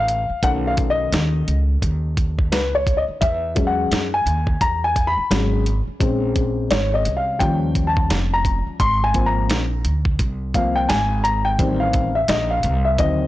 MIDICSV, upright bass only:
0, 0, Header, 1, 3, 480
1, 0, Start_track
1, 0, Tempo, 697674
1, 294, Time_signature, 4, 2, 24, 8
1, 9131, End_track
2, 0, Start_track
2, 0, Title_t, "Upright bass"
2, 0, Program_c, 0, 32
2, 0, Note_on_c, 0, 33, 94
2, 182, Note_off_c, 0, 33, 0
2, 293, Note_on_c, 0, 35, 99
2, 750, Note_off_c, 0, 35, 0
2, 774, Note_on_c, 0, 39, 95
2, 1002, Note_off_c, 0, 39, 0
2, 1017, Note_on_c, 0, 37, 83
2, 1244, Note_off_c, 0, 37, 0
2, 1253, Note_on_c, 0, 39, 82
2, 1731, Note_off_c, 0, 39, 0
2, 1731, Note_on_c, 0, 37, 96
2, 2100, Note_off_c, 0, 37, 0
2, 2213, Note_on_c, 0, 40, 114
2, 2670, Note_off_c, 0, 40, 0
2, 2690, Note_on_c, 0, 42, 93
2, 2920, Note_off_c, 0, 42, 0
2, 2929, Note_on_c, 0, 39, 86
2, 3160, Note_off_c, 0, 39, 0
2, 3171, Note_on_c, 0, 40, 84
2, 3540, Note_off_c, 0, 40, 0
2, 3651, Note_on_c, 0, 32, 102
2, 4020, Note_off_c, 0, 32, 0
2, 4132, Note_on_c, 0, 34, 99
2, 4589, Note_off_c, 0, 34, 0
2, 4616, Note_on_c, 0, 32, 92
2, 4843, Note_off_c, 0, 32, 0
2, 4857, Note_on_c, 0, 36, 80
2, 5084, Note_off_c, 0, 36, 0
2, 5094, Note_on_c, 0, 39, 99
2, 5576, Note_on_c, 0, 29, 95
2, 5586, Note_off_c, 0, 39, 0
2, 5943, Note_off_c, 0, 29, 0
2, 6052, Note_on_c, 0, 32, 102
2, 6534, Note_off_c, 0, 32, 0
2, 6534, Note_on_c, 0, 34, 88
2, 6762, Note_off_c, 0, 34, 0
2, 6773, Note_on_c, 0, 38, 84
2, 7002, Note_off_c, 0, 38, 0
2, 7012, Note_on_c, 0, 36, 87
2, 7469, Note_off_c, 0, 36, 0
2, 7493, Note_on_c, 0, 32, 97
2, 7950, Note_off_c, 0, 32, 0
2, 7975, Note_on_c, 0, 33, 105
2, 8431, Note_off_c, 0, 33, 0
2, 8453, Note_on_c, 0, 34, 99
2, 8682, Note_off_c, 0, 34, 0
2, 8697, Note_on_c, 0, 36, 99
2, 8924, Note_off_c, 0, 36, 0
2, 8932, Note_on_c, 0, 38, 82
2, 9131, Note_off_c, 0, 38, 0
2, 9131, End_track
3, 0, Start_track
3, 0, Title_t, "Muted upright bass strokes"
3, 202, Note_on_c, 9, 29, 46
3, 271, Note_off_c, 9, 29, 0
3, 2122, Note_on_c, 9, 29, 40
3, 2190, Note_off_c, 9, 29, 0
3, 3560, Note_on_c, 9, 29, 44
3, 3628, Note_off_c, 9, 29, 0
3, 4041, Note_on_c, 9, 29, 40
3, 4109, Note_off_c, 9, 29, 0
3, 5963, Note_on_c, 9, 29, 46
3, 6032, Note_off_c, 9, 29, 0
3, 9131, End_track
0, 0, End_of_file